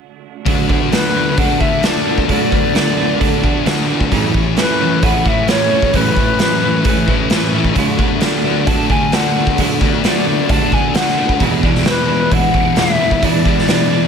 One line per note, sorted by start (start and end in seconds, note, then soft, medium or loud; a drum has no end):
0.46 0.91 D3 medium
0.46 0.93 F#3 medium
0.46 0.70 A3 medium
0.46 0.69 D4 medium
0.46 0.68 F#4 medium
0.46 kick loud
0.46 open hi-hat soft
0.69 0.92 A3 soft
0.69 1.16 B3 medium
0.69 0.92 D4 medium
0.69 0.93 F#4 medium
0.69 kick medium
0.91 1.37 D3 medium
0.91 2.30 F#3 medium
0.91 1.16 A3 medium
0.91 1.16 D4 medium
0.91 1.15 F#4 medium
0.91 1.39 B4 medium
0.91 snare medium
0.91 open hi-hat soft
1.15 1.38 A3 soft
1.15 2.06 B3 medium
1.15 1.38 D4 soft
1.15 1.39 F#4 medium
1.37 1.82 D3 medium
1.37 1.62 A3 medium
1.37 1.61 D4 medium
1.37 1.60 F#4 medium
1.37 1.83 A4 medium
1.37 1.62 F#5 loud
1.37 kick loud
1.37 open hi-hat soft
1.60 1.84 A3 medium
1.60 1.83 D4 medium
1.60 1.85 F#4 medium
1.60 3.44 F#4 medium
1.60 1.86 E5 medium
1.60 kick medium
1.83 2.28 D3 medium
1.83 2.07 A3 medium
1.83 2.06 D4 medium
1.83 2.06 F#4 medium
1.83 3.02 A4 medium
1.83 2.29 D5 medium
1.83 snare loud
1.83 open hi-hat soft
2.06 2.29 A3 soft
2.06 2.52 B3 medium
2.06 2.29 D4 medium
2.06 2.30 F#4 medium
2.18 kick medium
2.29 2.73 D3 medium
2.29 2.75 F#3 medium
2.29 2.53 A3 medium
2.29 2.51 D4 medium
2.29 2.51 F#4 medium
2.29 3.85 D5 medium
2.29 kick medium
2.29 open hi-hat soft
2.51 2.74 A3 medium
2.51 2.98 B3 medium
2.51 2.74 D4 medium
2.51 2.75 F#4 medium
2.51 kick medium
2.74 3.18 D3 medium
2.74 4.12 F#3 medium
2.74 2.99 A3 medium
2.74 2.97 D4 medium
2.74 2.97 F#4 medium
2.74 snare medium
2.74 open hi-hat soft
2.97 3.19 A3 medium
2.97 3.90 B3 medium
2.97 3.19 D4 medium
2.97 3.21 F#4 medium
3.20 3.63 D3 medium
3.20 3.43 A3 medium
3.20 3.42 D4 medium
3.20 3.42 F#4 medium
3.20 3.66 A4 medium
3.20 kick medium
3.20 open hi-hat soft
3.42 3.65 A3 medium
3.42 3.64 D4 medium
3.42 3.66 F#4 medium
3.42 5.26 F#4 medium
3.42 kick medium
3.65 4.10 D3 medium
3.65 3.90 A3 medium
3.65 3.88 D4 medium
3.65 3.88 F#4 medium
3.65 5.03 A4 medium
3.65 snare medium
3.65 open hi-hat soft
3.88 4.11 A3 soft
3.88 4.34 B3 medium
3.88 4.11 D4 medium
3.88 4.12 F#4 medium
4.00 kick medium
4.11 5.02 A2 medium
4.11 4.56 E3 medium
4.11 4.57 F#3 medium
4.11 4.35 A3 medium
4.11 4.35 C#4 medium
4.11 4.33 E4 medium
4.11 kick medium
4.11 open hi-hat soft
4.34 4.58 E3 medium
4.34 4.57 A3 medium
4.34 4.79 C#4 medium
4.34 4.57 C#4 medium
4.34 4.58 E4 medium
4.34 kick medium
4.56 5.01 A2 medium
4.56 5.02 E3 medium
4.56 5.95 F#3 medium
4.56 4.80 A3 medium
4.56 4.79 C#4 medium
4.56 4.79 E4 medium
4.56 5.04 B4 medium
4.56 snare medium
4.56 open hi-hat soft
4.79 5.02 E3 medium
4.79 5.02 A3 soft
4.79 5.02 C#4 medium
4.79 5.70 C#4 medium
4.79 5.02 E4 medium
5.02 5.48 A2 medium
5.02 5.46 E3 medium
5.02 5.26 A3 medium
5.02 5.24 C#4 medium
5.02 5.23 E4 medium
5.02 5.48 B4 medium
5.02 5.29 F#5 medium
5.02 kick loud
5.02 open hi-hat soft
5.24 5.48 E3 medium
5.24 5.48 A3 medium
5.24 5.47 C#4 medium
5.24 5.48 E4 medium
5.24 6.40 E4 medium
5.24 5.50 E5 medium
5.24 kick medium
5.47 5.92 A2 medium
5.47 5.93 E3 medium
5.47 5.72 A3 medium
5.47 5.70 C#4 medium
5.47 5.70 E4 medium
5.47 6.67 B4 medium
5.47 5.96 C#5 medium
5.47 snare loud
5.47 open hi-hat soft
5.71 5.94 E3 soft
5.71 5.95 A3 soft
5.71 5.94 C#4 medium
5.71 6.16 C#4 medium
5.71 5.94 E4 medium
5.82 kick medium
5.93 6.39 A2 medium
5.93 6.38 E3 medium
5.93 6.39 F#3 medium
5.93 6.17 A3 medium
5.93 6.16 C#4 loud
5.93 6.15 E4 loud
5.93 7.54 B4 medium
5.93 kick medium
5.93 open hi-hat soft
6.16 6.40 E3 soft
6.16 6.40 A3 soft
6.16 6.40 C#4 medium
6.16 6.62 C#4 medium
6.16 6.40 E4 medium
6.16 kick medium
6.39 6.83 A2 medium
6.39 6.84 E3 medium
6.39 7.75 F#3 medium
6.39 6.63 A3 medium
6.39 6.61 C#4 medium
6.39 6.61 E4 medium
6.39 snare medium
6.39 open hi-hat soft
6.62 6.85 E3 soft
6.62 6.85 A3 soft
6.62 6.85 C#4 medium
6.62 7.53 C#4 medium
6.62 6.85 E4 medium
6.84 7.30 A2 medium
6.84 7.29 E3 medium
6.84 7.09 A3 medium
6.84 7.07 C#4 medium
6.84 7.06 E4 loud
6.84 7.31 B4 medium
6.84 kick medium
6.84 open hi-hat soft
7.08 7.30 E3 medium
7.08 7.31 A3 medium
7.08 7.31 C#4 medium
7.08 7.32 E4 medium
7.08 7.77 E4 medium
7.08 kick medium
7.29 7.74 A2 medium
7.29 7.75 E3 medium
7.29 7.55 A3 medium
7.29 7.54 C#4 medium
7.29 7.53 E4 medium
7.29 8.66 B4 medium
7.29 snare medium
7.29 open hi-hat soft
7.54 7.76 E3 soft
7.54 7.77 A3 soft
7.54 7.77 C#4 medium
7.54 7.76 C#4 medium
7.54 7.75 E4 medium
7.64 kick medium
7.76 8.21 D3 medium
7.76 8.20 F#3 medium
7.76 8.00 A3 medium
7.76 7.99 D4 medium
7.76 7.98 F#4 medium
7.76 kick medium
7.76 open hi-hat soft
7.98 8.21 A3 medium
7.98 8.45 B3 medium
7.98 8.22 D4 medium
7.98 8.23 F#4 medium
7.98 kick medium
8.21 8.66 D3 medium
8.21 9.35 F#3 medium
8.21 8.45 A3 medium
8.21 8.45 D4 medium
8.21 8.44 F#4 medium
8.21 8.68 D5 medium
8.21 snare medium
8.21 open hi-hat soft
8.44 8.67 A3 soft
8.44 9.36 B3 medium
8.44 8.67 D4 medium
8.44 8.67 F#4 medium
8.66 9.11 D3 medium
8.66 8.91 A3 medium
8.66 8.90 D4 medium
8.66 8.88 F#4 medium
8.66 9.12 A4 medium
8.66 8.89 A5 loud
8.66 kick medium
8.66 open hi-hat soft
8.90 9.13 A3 medium
8.90 10.72 D4 medium
8.90 9.14 D4 medium
8.90 9.13 F#4 medium
8.90 9.16 G#5 medium
8.90 kick medium
9.12 9.58 D3 medium
9.12 9.37 A3 medium
9.12 9.36 D4 medium
9.12 9.34 F#4 medium
9.12 10.28 A4 medium
9.12 9.59 F#5 medium
9.12 snare medium
9.12 open hi-hat soft
9.36 9.59 A3 medium
9.36 9.80 B3 medium
9.36 9.60 D4 medium
9.36 9.59 F#4 medium
9.47 kick medium
9.58 10.03 D3 medium
9.58 10.02 F#3 medium
9.58 9.83 A3 medium
9.58 9.82 D4 medium
9.58 9.81 F#4 medium
9.58 kick medium
9.58 open hi-hat soft
9.80 10.05 A3 soft
9.80 10.25 B3 medium
9.80 10.05 D4 medium
9.80 10.05 F#4 medium
9.80 kick medium
10.03 10.48 D3 medium
10.03 11.17 F#3 medium
10.03 10.28 A3 medium
10.03 10.28 D4 medium
10.03 10.26 F#4 medium
10.03 10.51 D5 medium
10.03 snare medium
10.03 open hi-hat soft
10.25 10.50 A3 soft
10.25 11.18 B3 medium
10.25 10.51 D4 medium
10.25 10.50 F#4 medium
10.48 10.94 D3 medium
10.48 10.74 A3 medium
10.48 10.73 D4 medium
10.48 10.71 F#4 medium
10.48 10.95 A4 medium
10.48 10.74 A5 loud
10.48 kick medium
10.48 open hi-hat soft
10.72 10.96 A3 medium
10.72 11.63 D4 medium
10.72 10.96 D4 medium
10.72 10.96 F#4 medium
10.72 10.96 G#5 medium
10.72 kick medium
10.94 11.39 D3 medium
10.94 11.19 A3 medium
10.94 11.19 D4 medium
10.94 11.17 F#4 medium
10.94 11.44 A4 medium
10.94 11.40 F#5 medium
10.94 snare loud
10.94 open hi-hat soft
11.07 snare soft
11.18 11.41 A3 medium
11.18 11.40 B3 medium
11.18 11.42 D4 medium
11.18 11.39 F#4 medium
11.29 kick medium
11.40 11.90 E2 medium
11.40 11.86 B2 medium
11.40 11.65 E3 medium
11.40 11.63 G#3 medium
11.40 11.86 B3 medium
11.40 11.64 D4 medium
11.40 11.63 E4 medium
11.40 kick medium
11.40 open hi-hat soft
11.63 11.86 B2 medium
11.63 11.86 E3 medium
11.63 11.86 G#3 medium
11.63 12.55 D4 medium
11.63 11.87 D4 medium
11.63 11.88 E4 medium
11.63 kick medium
11.75 snare soft
11.85 12.31 E2 medium
11.85 12.10 B2 medium
11.85 12.10 E3 medium
11.85 12.09 G#3 medium
11.85 12.10 B3 medium
11.85 12.09 D4 medium
11.85 12.08 E4 medium
11.85 12.34 B4 medium
11.85 snare medium
11.85 open hi-hat soft
12.09 12.32 B2 medium
12.09 12.31 E3 soft
12.09 12.32 G#3 medium
12.09 13.00 B3 medium
12.09 12.33 D4 medium
12.09 12.32 E4 medium
12.31 12.77 E2 medium
12.31 12.77 B2 medium
12.31 12.55 E3 medium
12.31 12.55 G#3 medium
12.31 12.55 D4 medium
12.31 12.53 E4 loud
12.31 12.80 F#5 loud
12.31 kick medium
12.31 open hi-hat soft
12.54 12.76 B2 medium
12.54 12.76 E3 medium
12.54 12.76 G#3 medium
12.54 13.45 D4 medium
12.54 12.78 D4 medium
12.54 12.78 E4 medium
12.54 kick medium
12.76 13.19 E2 medium
12.76 13.01 B2 medium
12.76 13.01 E3 medium
12.76 13.01 G#3 medium
12.76 13.00 D4 medium
12.76 12.99 E4 medium
12.76 13.25 E5 medium
12.76 snare loud
12.76 open hi-hat soft
12.89 snare soft
13.00 13.21 B2 soft
13.00 13.22 E3 soft
13.00 13.23 G#3 soft
13.00 13.22 B3 medium
13.00 13.23 D4 medium
13.00 13.24 E4 medium
13.11 kick medium
13.23 13.68 E2 medium
13.23 13.69 B2 medium
13.23 13.46 E3 medium
13.23 13.45 G#3 medium
13.23 13.68 B3 medium
13.23 13.44 D4 medium
13.23 13.44 E4 medium
13.23 14.08 D5 medium
13.23 kick medium
13.23 open hi-hat soft
13.45 13.68 B2 soft
13.45 13.67 E3 medium
13.45 13.68 G#3 medium
13.45 13.68 D4 medium
13.45 14.08 D4 medium
13.45 13.69 E4 medium
13.45 kick medium
13.58 snare soft
13.67 14.08 E2 medium
13.67 13.91 B2 medium
13.67 13.92 E3 medium
13.67 13.91 G#3 medium
13.67 13.90 B3 medium
13.67 13.91 D4 medium
13.67 13.90 E4 medium
13.67 snare medium
13.67 open hi-hat soft
13.89 14.08 B2 medium
13.89 14.08 E3 medium
13.89 14.08 G#3 medium
13.89 14.08 B3 medium
13.89 14.08 D4 medium
13.89 14.08 E4 medium
13.93 14.08 E3 medium